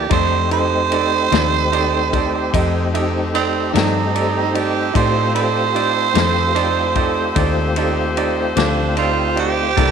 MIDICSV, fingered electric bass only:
0, 0, Header, 1, 2, 480
1, 0, Start_track
1, 0, Tempo, 805369
1, 65, Time_signature, 12, 3, 24, 8
1, 5908, End_track
2, 0, Start_track
2, 0, Title_t, "Fingered electric bass"
2, 0, Program_c, 0, 33
2, 65, Note_on_c, 0, 41, 76
2, 765, Note_off_c, 0, 41, 0
2, 787, Note_on_c, 0, 39, 80
2, 1486, Note_off_c, 0, 39, 0
2, 1513, Note_on_c, 0, 41, 79
2, 2209, Note_off_c, 0, 41, 0
2, 2234, Note_on_c, 0, 43, 90
2, 2930, Note_off_c, 0, 43, 0
2, 2953, Note_on_c, 0, 45, 77
2, 3648, Note_off_c, 0, 45, 0
2, 3668, Note_on_c, 0, 41, 82
2, 4365, Note_off_c, 0, 41, 0
2, 4387, Note_on_c, 0, 39, 77
2, 5083, Note_off_c, 0, 39, 0
2, 5107, Note_on_c, 0, 38, 93
2, 5802, Note_off_c, 0, 38, 0
2, 5828, Note_on_c, 0, 36, 89
2, 5908, Note_off_c, 0, 36, 0
2, 5908, End_track
0, 0, End_of_file